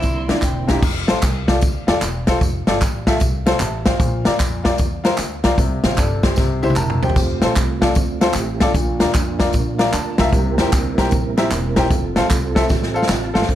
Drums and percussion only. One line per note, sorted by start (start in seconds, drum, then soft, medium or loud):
0.02 kick loud
0.02 closed hi-hat medium
0.02 tambourine medium
0.29 snare loud
0.29 closed hi-hat medium
0.29 tambourine medium
0.42 kick medium
0.42 clap medium
0.42 closed hi-hat medium
0.42 tambourine medium
0.68 kick medium
0.68 snare medium
0.68 closed hi-hat medium
0.68 tambourine medium
0.83 kick loud
0.83 crash loud
0.83 tambourine medium
1.08 snare loud
1.08 closed hi-hat medium
1.08 tambourine medium
1.22 kick loud
1.22 clap loud
1.22 closed hi-hat loud
1.22 tambourine loud
1.48 kick medium
1.48 snare loud
1.48 closed hi-hat medium
1.48 tambourine medium
1.61 kick loud
1.61 closed hi-hat medium
1.61 tambourine loud
1.88 snare loud
1.88 closed hi-hat medium
1.88 tambourine medium
2.02 clap loud
2.02 closed hi-hat medium
2.02 tambourine loud
2.27 kick medium
2.27 snare loud
2.27 closed hi-hat medium
2.27 tambourine medium
2.41 kick loud
2.41 closed hi-hat medium
2.41 tambourine medium
2.67 snare loud
2.67 closed hi-hat medium
2.67 tambourine medium
2.81 kick medium
2.81 clap loud
2.81 closed hi-hat loud
2.81 tambourine loud
3.07 kick medium
3.07 snare loud
3.07 closed hi-hat medium
3.07 tambourine medium
3.20 kick loud
3.20 closed hi-hat medium
3.20 tambourine medium
3.46 snare loud
3.46 closed hi-hat medium
3.46 tambourine medium
3.60 clap loud
3.60 closed hi-hat loud
3.60 tambourine medium
3.85 kick medium
3.85 snare loud
3.85 closed hi-hat medium
3.85 tambourine medium
4.00 kick loud
4.00 closed hi-hat medium
4.00 tambourine medium
4.25 snare loud
4.25 closed hi-hat medium
4.25 tambourine medium
4.39 kick loud
4.39 clap medium
4.39 closed hi-hat loud
4.39 tambourine loud
4.65 kick medium
4.65 snare loud
4.65 closed hi-hat medium
4.65 tambourine medium
4.78 kick loud
4.78 closed hi-hat medium
4.78 tambourine medium
5.04 snare loud
5.04 closed hi-hat medium
5.04 tambourine medium
5.18 clap medium
5.18 closed hi-hat medium
5.18 tambourine medium
5.44 kick medium
5.44 snare loud
5.44 closed hi-hat medium
5.44 tambourine medium
5.58 kick loud
5.58 closed hi-hat medium
5.58 tambourine medium
5.84 snare loud
5.84 closed hi-hat medium
5.84 tambourine medium
5.97 kick medium
5.97 clap medium
5.97 closed hi-hat loud
5.97 tambourine medium
6.23 kick medium
6.23 snare loud
6.23 closed hi-hat medium
6.23 tambourine medium
6.36 kick loud
6.36 snare medium
6.36 tambourine loud
6.63 high tom medium
6.63 tambourine medium
6.70 high tom medium
6.76 clap medium
6.76 tambourine medium
6.90 mid tom medium
7.03 floor tom loud
7.03 tambourine medium
7.09 floor tom medium
7.16 kick loud
7.16 tambourine medium
7.16 splash medium
7.42 snare loud
7.42 closed hi-hat medium
7.42 tambourine medium
7.56 kick loud
7.56 clap loud
7.56 closed hi-hat loud
7.56 tambourine loud
7.82 kick medium
7.82 snare loud
7.82 closed hi-hat medium
7.82 tambourine medium
7.95 kick loud
7.95 closed hi-hat medium
7.95 tambourine loud
8.21 snare loud
8.21 closed hi-hat medium
8.21 tambourine medium
8.34 clap medium
8.34 closed hi-hat medium
8.34 tambourine loud
8.60 kick medium
8.60 snare loud
8.60 closed hi-hat medium
8.60 tambourine medium
8.74 kick loud
8.74 closed hi-hat medium
8.74 tambourine medium
9.00 snare loud
9.00 closed hi-hat medium
9.00 tambourine medium
9.14 kick loud
9.14 clap loud
9.14 closed hi-hat loud
9.14 tambourine loud
9.40 kick medium
9.40 snare loud
9.40 closed hi-hat medium
9.40 tambourine medium
9.52 kick loud
9.52 closed hi-hat medium
9.52 tambourine medium
9.79 snare loud
9.79 closed hi-hat medium
9.79 tambourine medium
9.93 clap loud
9.93 closed hi-hat medium
9.93 tambourine medium
10.18 kick medium
10.18 snare loud
10.18 closed hi-hat medium
10.18 tambourine medium
10.32 kick loud
10.32 closed hi-hat medium
10.32 tambourine medium
10.58 snare loud
10.58 closed hi-hat medium
10.58 tambourine medium
10.72 kick loud
10.72 clap loud
10.72 closed hi-hat loud
10.72 tambourine loud
10.98 kick medium
10.98 snare loud
10.98 closed hi-hat medium
10.98 tambourine medium
11.11 kick loud
11.11 closed hi-hat medium
11.11 tambourine loud
11.37 snare loud
11.37 closed hi-hat medium
11.37 tambourine medium
11.51 clap loud
11.51 closed hi-hat medium
11.51 tambourine medium
11.76 kick medium
11.76 snare loud
11.76 closed hi-hat medium
11.76 tambourine medium
11.90 kick loud
11.90 closed hi-hat medium
11.90 tambourine medium
12.16 snare loud
12.16 closed hi-hat medium
12.16 tambourine medium
12.30 kick medium
12.30 clap loud
12.30 closed hi-hat loud
12.30 tambourine loud
12.56 kick medium
12.56 snare loud
12.56 closed hi-hat medium
12.56 tambourine medium
12.69 kick loud
12.69 snare medium
12.69 tambourine medium
12.83 snare medium
12.96 tambourine medium
13.02 snare medium
13.09 snare medium
13.09 clap loud
13.09 tambourine loud
13.35 snare loud
13.35 tambourine medium
13.42 snare medium
13.49 kick loud
13.49 closed hi-hat medium